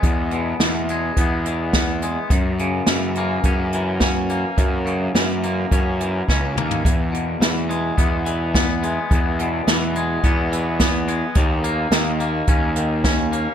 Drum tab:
HH |x-x-x-x-x-x-x-x-|x-x-x-x-x-x-x-x-|x-x-x-x-x-x-----|x-x-x-x-x-x-x-x-|
SD |----o-------o---|----o-------o---|----o-------o---|----o-------o---|
T2 |----------------|----------------|--------------o-|----------------|
FT |----------------|----------------|---------------o|----------------|
BD |o-------o---o---|o-------o---o---|o-------o---o---|o-------o---o---|

HH |x-x-x-x-x-x-x-x-|x-x-x-x-x-x-x-x-|
SD |----o-------o---|----o-------o---|
T2 |----------------|----------------|
FT |----------------|----------------|
BD |o-------o---o---|o-------o---o---|